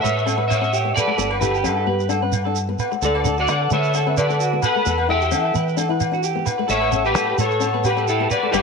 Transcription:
0.01 A2 A3 B4 C#5 E5
0.05 shekere
0.18 shekere
0.26 C#4 A4, low agogo, shekere
0.37 B4, muted nylon-string guitar stroke
0.48 C#5 E5, low agogo, shekere
0.61 C#4, muted clean electric guitar stroke, shekere
0.73 G4, shekere
0.85 B3
0.94 A4 B4 D5, low agogo, shekere
1.07 A3 A4
1.18 G1 B3 A4, shekere
1.31 B4, low agogo
1.40 E4 G4 A4 B4, shekere
1.55 G4, shekere
1.64 G2 C#4 A4, low agogo, shekere
1.77 A4
1.87 G2 B3 B4
2.00 shekere
2.09 D4 A4, low agogo, shekere
2.22 C#4 B4
2.32 low agogo, shekere
2.45 D4 A4
2.56 shekere
2.69 B3
2.79 B4, low agogo, shekere
2.92 A3, muted clean electric guitar stroke, shekere
3.02 D2 A3 A4 D5, shekere
3.15 B4, low agogo
3.25 D4 A4, shekere
3.37 F#4 D5 F#5, shekere
3.48 D3 B3 D5, low agogo, shekere
3.61 A4
3.71 D3 A3 A4 B4 C#5 E5, shekere
3.84 shekere
3.94 D4 A4, low agogo, shekere
4.07 C#4 B4
4.17 A4 B4 D5, low agogo, shekere
4.29 A4, muted nylon-string guitar stroke, shekere
4.40 F#4, shekere
4.53 B3
4.61 A4 B4 F#5, low agogo, shekere
4.76 A3 A4
4.86 E2 B3 A4, shekere
4.98 B4, low agogo
5.09 E4 A4 E5 G5
5.21 G4, shekere
5.32 E3 C#4 A4, low agogo, shekere
5.45 A4
5.54 E3 B3 B4, shekere
5.68 shekere
5.77 D4 A4, low agogo, shekere
5.89 E4 B4
6.01 low agogo, shekere
6.12 D4 F#4, shekere
6.23 G4, shekere
6.36 B3
6.46 B4, low agogo, shekere
6.58 A3 B4
6.68 A1 A3 A4 C#5 E5, shekere
6.81 B4, low agogo
6.91 C#4 A4, shekere
7.04 G4 B4, shekere
7.15 A2 B3 A4, low agogo, shekere
7.27 A4
7.38 A2 A3 A4 B4 C#5, shekere
7.50 shekere
7.60 C#4 A4, low agogo, shekere
7.74 B3 B4
7.84 G4 B4, low agogo, shekere
7.97 A4, muted nylon-string guitar stroke, shekere
8.08 E4 G4 A4, shekere
8.20 B3
8.30 B4 D5, low agogo, shekere
8.43 A3 A4
8.51 G1 G3 B3 D4 E4 G4 B4 D5, low agogo, shekere

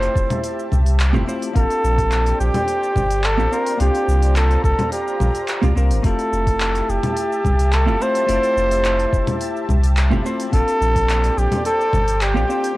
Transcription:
Already playing: A3 C4 E4 F4 G4 C5 E5 A5
0.02 open hi-hat
0.16 F1, kick, shaker
0.30 open hi-hat, low conga, shaker
0.44 open hi-hat, shaker
0.59 shaker
0.72 C2, low conga, shaker
0.86 open hi-hat, shaker
1.00 clap, open hi-hat, shaker
1.13 F1 A3 C4 E4 F4 G4, low conga, shaker
1.26 A3 C4 E4 F4 C5, shaker
1.42 open hi-hat, shaker
1.53 A#1 A#3 C4 D4 F4 A4 C5 D5 G5, kick, open hi-hat, shaker
1.58 G4
1.70 open hi-hat, shaker
1.84 A#1, shaker
1.98 kick, open hi-hat, shaker
2.12 clap, open hi-hat, shaker
2.26 open hi-hat
2.40 A#1 G4, shaker
2.54 open hi-hat, low conga, shaker
2.68 open hi-hat, shaker
2.83 shaker
2.96 G1, kick, low conga, shaker
3.11 open hi-hat, shaker
3.24 A4, clap, open hi-hat, shaker
3.38 A#1 A#3 C4 D4 F4 G4, shaker
3.51 A#3 C4 D4 F4 A#4 C5, shaker
3.66 open hi-hat, shaker
3.77 C2 A#3 C4 D4 F4 G4 A#5, open hi-hat, shaker
3.82 G4
3.95 open hi-hat, shaker
4.08 C2, shaker
4.22 open hi-hat, shaker
4.36 A4, clap, open hi-hat, shaker
4.51 open hi-hat
4.64 C2 A4, kick, shaker
4.79 open hi-hat, low conga, shaker
4.92 G4, open hi-hat, shaker
5.08 shaker
5.20 A#1, low conga, shaker
5.35 open hi-hat, shaker
5.48 clap, open hi-hat, shaker
5.62 C2 A#3 C4 D4 F4 G4, open hi-hat, low conga, shaker
5.75 C2 A#3 C4 D4 F4 A#4, shaker
5.91 G1, open hi-hat, shaker
6.02 F1 A3 C4 E4 F4 G4 A4 E5 A5, kick, open hi-hat, shaker
6.06 G4
6.19 open hi-hat, shaker
6.32 F1, shaker
6.47 kick, open hi-hat, shaker
6.60 clap, open hi-hat, shaker
6.75 open hi-hat
6.89 F1 G4, shaker
7.03 open hi-hat, low conga, shaker
7.17 open hi-hat, shaker
7.32 shaker
7.44 C2, kick, low conga, shaker
7.59 open hi-hat, shaker
7.73 A4, clap, open hi-hat, shaker
7.86 F1 A3 C4 E4 F4 G4, shaker
8.00 A3 C4 E4 F4 C5, shaker
8.15 open hi-hat, shaker
8.26 F1 A3 C4 E4 F4, open hi-hat, shaker
8.31 G4
8.43 open hi-hat, shaker
8.56 F1, shaker
8.71 open hi-hat, shaker
8.85 clap, open hi-hat, shaker
8.99 open hi-hat
9.13 F1, kick, shaker
9.27 open hi-hat, low conga, shaker
9.41 open hi-hat, shaker
9.56 shaker
9.69 C2, low conga, shaker
9.83 open hi-hat, shaker
9.97 clap, open hi-hat, shaker
10.10 F1 A3 C4 E4 F4 G4, low conga, shaker
10.24 A3 C4 E4 F4 C5, shaker
10.40 open hi-hat, shaker
10.51 A#1 A#3 C4 D4 F4 A4 C5 D5 G5, kick, open hi-hat, shaker
10.55 G4
10.68 open hi-hat, shaker
10.81 A#1, shaker
10.96 kick, open hi-hat, shaker
11.09 clap, open hi-hat, shaker
11.24 open hi-hat
11.37 A#1 G4, shaker
11.52 open hi-hat, low conga, shaker
11.65 A4, open hi-hat, shaker
11.81 shaker
11.93 G1, kick, low conga, shaker
12.08 open hi-hat, shaker
12.21 G4, clap, open hi-hat, shaker
12.34 A#1 A#3 C4 D4 F4 G4, shaker
12.48 A#3 C4 D4 F4 C5, shaker
12.64 open hi-hat, shaker

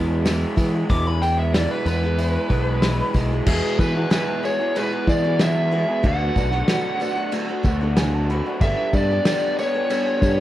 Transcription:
Already playing: E2 E3 G#3 B3 E4
0.25 E2 B2 E3 G#3 B3 E4, snare, open hi-hat, tambourine
0.56 E3 G#3 B3 E4, kick, open hi-hat, tambourine
0.74 E3 G#3 B3 E4
0.89 E2 B2 E3 G#3 B3 E4 D6, kick, open hi-hat, tambourine
1.06 E3 G#3 B3 E4 B5
1.22 E3 G#3 B3 E4 G5, open hi-hat, tambourine
1.38 E5
1.54 E2 B2 E3 G#3 B3 E4 D5, snare, open hi-hat, tambourine
1.71 B4
1.85 E2 E3 G#3 B3 E4 B4, open hi-hat, tambourine
2.02 G#3 B3 E4, snare
2.06 E3
2.18 E4, open hi-hat, tambourine
2.49 B1 E3 G#3 B3 E4, kick, open hi-hat, tambourine
2.82 E2 B2 E3 G#3 B3 E4, snare, open hi-hat, tambourine
3.14 B1 E3 G#3 B3 E4, kick, open hi-hat, tambourine
3.31 E3 G#3 B3 E4
3.46 E2 B2 E3 G#3 B3 E4 F#4 G#4 E5, kick, crash, tambourine
3.79 E3 G#3 B3 E4 F#4 G#4 B4, kick, tambourine
3.95 E3 G#3 B3 E4 F#4 G#4
4.10 E2 B2 E3 G#3 B3 E4 F#4 B4, snare, tambourine, crash
4.14 G#4
4.43 E3 G#3 B3 E4 F#4 G#4 C#5, tambourine
4.58 E3 G#3 B3 E4 F#4 G#4
4.75 E2 B2 E3 G#3 B3 F#4 B4, tambourine, crash
4.90 E3 G#3 B3 F#4
5.07 E3 G#3 B3 E4 F#4 G#4 D5, kick, tambourine
5.24 E3 G#3 B3 E4 F#4 G#4
5.39 E2 B2 E3 B3 E4 G#4 E5, snare, tambourine, crash
5.71 E3 G#3 B3 E4 F#4 G#4
5.88 E3 B3 E4 G#4
6.03 D2 D3 F#3 A3 B3 D4 F#4 B4 D5 F#5, kick, tambourine, crash
6.36 B1 D3 F#3 A3 B3 D4 F#4, kick, tambourine
6.52 A3 B3 D4 F#4, snare
6.68 D3 F#3 A3 B3 D4 F#4, snare, tambourine, crash
7.00 D3 F#3 A3 B3 D4 F#4 D5, tambourine
7.15 A3 B3 D4 F#4
7.32 D3 A3 B3 F#4 F#5, tambourine, crash
7.48 A3 B3 F#4
7.63 D2 D3 F#3 A3 B3 D4 F#4 F#5, kick, tambourine
7.81 A3 B3 D4 F#4
7.97 D3 F#3 A3 D4 F#4 G#5, snare, tambourine, crash
8.15 A5
8.29 D3 F#3 A3 B3 D4 F#4 B5
8.46 A3 B3 D4 F#4
8.61 G1 G2 D3 G3 B3 D4 G4 A4 B4 E5, kick, tambourine, crash
8.93 G2 G3 B3 D4 G4 A4 D5, kick, tambourine
9.10 G3 B3 D4 G4 A4
9.25 G2 D3 G3 B3 D4 G4 A4, snare, tambourine, crash
9.59 G3 B3 D4 G4 A4 C#5, tambourine
9.74 G3 B3 D4 G4 A4
9.90 G3 B3 D4 A4, tambourine, crash
10.06 B3 D4 A4
10.22 G2 G3 B3 D4 G4, kick, tambourine
10.26 A4

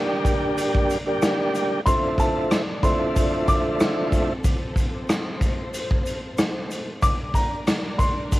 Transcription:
Already playing: D3 G3 A#3 D4 G4 A#4 D5
0.25 kick, closed hi-hat, shaker
0.58 closed hi-hat, shaker
0.75 kick
0.90 closed hi-hat, shaker
1.06 D3 G3 A#3 D4 G4
1.22 cross-stick, snare, closed hi-hat, shaker
1.55 closed hi-hat, shaker
1.85 D3 F3 A3 C4 E4 A4 D5 C6, kick, closed hi-hat, shaker
2.18 A5, kick, closed hi-hat, shaker
2.51 cross-stick, snare, closed hi-hat, shaker
2.82 D3 F3 A3 C4 E4 C6, kick, closed hi-hat, shaker
3.16 kick, closed hi-hat, shaker
3.48 D6, kick, closed hi-hat, shaker
3.80 cross-stick, snare, closed hi-hat, shaker
4.12 kick, closed hi-hat, shaker
4.44 C5, kick, closed hi-hat, shaker
4.76 kick, closed hi-hat, shaker
5.09 cross-stick, snare, closed hi-hat, shaker
5.41 kick, closed hi-hat, shaker
5.74 closed hi-hat, shaker
5.91 kick
6.06 closed hi-hat, shaker
6.38 cross-stick, snare, closed hi-hat, shaker
6.71 closed hi-hat, shaker
7.02 D3 G3 D4 A#4 D5 D6, kick, closed hi-hat, shaker
7.34 A#5, kick, closed hi-hat, shaker
7.67 cross-stick, snare, closed hi-hat, shaker
7.99 C6, kick, closed hi-hat, shaker
8.32 kick, closed hi-hat, shaker

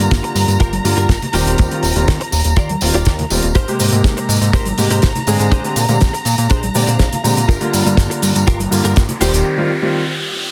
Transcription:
Already playing: A#5
0.00 D3 G3 A#3 F4
0.11 G1, kick, snare, closed hi-hat, tambourine
0.23 muted clean electric guitar stroke, closed hi-hat
0.35 G2, muted clean electric guitar stroke, open hi-hat, tambourine
0.48 G2, closed hi-hat, tambourine
0.60 G1 F4 G4 A#4, kick, closed hi-hat, tambourine
0.73 closed hi-hat, high conga
0.84 G2 D3 G3 A#3 F4, muted clean electric guitar stroke, open hi-hat, tambourine
0.97 G2 F4 G4 A#4, closed hi-hat, tambourine
1.09 G1, kick, snare, closed hi-hat, tambourine
1.22 closed hi-hat, low conga
1.33 D#1 D#3 G3 C4 F4 G4 C5, open hi-hat, tambourine
1.46 D#1, closed hi-hat, tambourine
1.58 D#2, kick, closed hi-hat, tambourine
1.71 D#3 G3 C4 F4, closed hi-hat
1.83 D#1, open hi-hat, tambourine
1.96 D#1 D#3 G3 C4 F4, closed hi-hat, tambourine
2.08 D#2, kick, snare, closed hi-hat, tambourine
2.20 muted clean electric guitar stroke, closed hi-hat
2.32 D#1, muted clean electric guitar stroke, open hi-hat, tambourine
2.44 D#1, closed hi-hat, tambourine
2.56 D#2 F4 G4 D5, kick, closed hi-hat, tambourine
2.69 closed hi-hat, high conga
2.81 D#1 D#3 G3 C4 F4, muted clean electric guitar stroke, open hi-hat, tambourine
2.94 D#1 F4 G4 D5, closed hi-hat, tambourine
3.05 D#2, kick, snare, closed hi-hat, tambourine
3.19 closed hi-hat, low conga
3.30 D#1 D#3 G3 C4 F4, muted clean electric guitar stroke, open hi-hat, tambourine
3.43 D#1, closed hi-hat, tambourine
3.55 G#1 G4 A#4 C5 A#5, kick, closed hi-hat, tambourine, cabasa
3.68 C3 G#3 A#3 G4, closed hi-hat, cabasa
3.80 G#2, open hi-hat, tambourine, cabasa
3.92 G#2 C3 G#3 A#3 G4, closed hi-hat, tambourine, cabasa
4.04 G#1, kick, snare, closed hi-hat, tambourine, cabasa
4.17 muted clean electric guitar stroke, closed hi-hat, cabasa
4.29 G#2, muted clean electric guitar stroke, open hi-hat, tambourine, cabasa
4.41 G#2, closed hi-hat, tambourine, cabasa
4.53 G#1 G4 A#4 C5, kick, closed hi-hat, tambourine, cabasa
4.65 closed hi-hat, high conga, cabasa
4.78 G#2 C3 G#3 A#3 G4, muted clean electric guitar stroke, open hi-hat, tambourine, cabasa
4.90 G#2 G4 A#4 C5, closed hi-hat, tambourine, cabasa
5.02 G#1, kick, snare, closed hi-hat, tambourine, cabasa
5.15 closed hi-hat, low conga, cabasa
5.27 G#2 D3 G#3 C4 G#4, muted clean electric guitar stroke, open hi-hat, tambourine, cabasa
5.39 G#2, closed hi-hat, tambourine, cabasa
5.51 A#1 D4 G4 G#4 C5, kick, closed hi-hat, tambourine, cabasa
5.64 D3 G#3 C4 G4, closed hi-hat, cabasa
5.76 A#2, open hi-hat, tambourine, cabasa
5.88 A#2 D3 G#3 C4 G4, closed hi-hat, tambourine, cabasa
6.01 A#1, kick, snare, closed hi-hat, tambourine, cabasa
6.13 muted clean electric guitar stroke, closed hi-hat, cabasa
6.25 A#2, muted clean electric guitar stroke, open hi-hat, tambourine, cabasa
6.38 A#2, closed hi-hat, tambourine, cabasa
6.50 A#1 D4 G4 G#4 C5, kick, closed hi-hat, tambourine, cabasa
6.63 closed hi-hat, high conga, cabasa
6.74 A#2 D3 G#3 C4 G4 D5, muted clean electric guitar stroke, open hi-hat, tambourine, cabasa
6.87 A#2 D4 G4 G#4 C5, closed hi-hat, tambourine, cabasa
6.99 A#1 F5, kick, snare, closed hi-hat, tambourine, cabasa
7.12 closed hi-hat, low conga, cabasa
7.24 A#2 D3 G#3 C4 G4 A#5, muted clean electric guitar stroke, open hi-hat, tambourine, cabasa
7.37 A#2, closed hi-hat, tambourine, cabasa
7.48 G1 F4 G4 A#4, kick, closed hi-hat, tambourine, riser, cabasa
7.61 D3 G3 A#3 F4, closed hi-hat, cabasa
7.73 G2, open hi-hat, tambourine, cabasa
7.85 G2 D3 G3 A#3 F4, closed hi-hat, tambourine, cabasa
7.97 G1, kick, snare, closed hi-hat, tambourine, cabasa
8.10 muted clean electric guitar stroke, closed hi-hat, cabasa
8.22 G2, muted clean electric guitar stroke, open hi-hat, tambourine, cabasa
8.36 G2, closed hi-hat, tambourine, cabasa
8.47 G1 F4 G4 A#4, kick, closed hi-hat, tambourine, cabasa
8.60 closed hi-hat, high conga, cabasa
8.71 G2 D3 G3 A#3 F4, muted clean electric guitar stroke, open hi-hat, tambourine, cabasa
8.84 G2 F4 G4 A#4, closed hi-hat, tambourine, cabasa
8.96 G1, kick, snare, closed hi-hat, tambourine, cabasa
9.09 closed hi-hat, low conga, cabasa
9.20 D#1 D#3 G3 C4 F4 G4 C5, open hi-hat, tambourine, cabasa
9.34 D#1, closed hi-hat, tambourine, cabasa
9.57 D#3 G3 C4 F4
9.82 D#3 G3 C4 F4

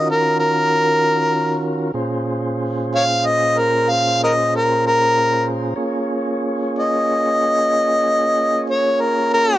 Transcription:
Already playing: D#3 C#4 F4 F#4 A#4
0.11 A#4
0.40 A#4
1.94 A#2 C#4 F4 G#4 C5
2.95 C#5 F5
3.26 D#5
3.59 A#4
3.90 F5
4.24 A#4 D#5
4.56 A#4
4.87 A#4
5.76 A#3 C#4 F4 G#4 C#5
6.79 D#5
8.70 C#5
9.01 A#4
9.34 A#4

